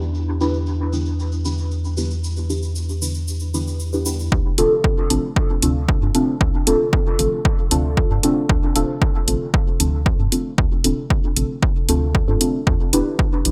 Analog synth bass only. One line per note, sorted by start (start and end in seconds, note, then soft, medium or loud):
0.00 4.29 E2 medium
4.32 4.41 D2 loud
4.58 4.67 D1 loud
5.10 5.19 A1 loud
5.62 5.95 D2 medium
6.02 6.11 G2 medium
6.41 6.50 D2 loud
6.67 6.76 D1 loud
7.19 7.28 A1 loud
7.71 8.04 D2 medium
8.10 8.19 G2 medium
8.49 8.58 D2 loud
8.75 8.84 D1 loud
9.28 9.37 A1 loud
9.80 10.12 D2 medium
10.19 10.28 G2 medium
10.58 10.67 D2 loud
10.84 10.93 D1 loud
11.36 11.45 A1 loud
11.89 12.21 D2 medium
12.28 12.37 G2 medium
12.67 12.76 E2 loud
12.93 13.02 E1 loud
13.45 13.52 B1 loud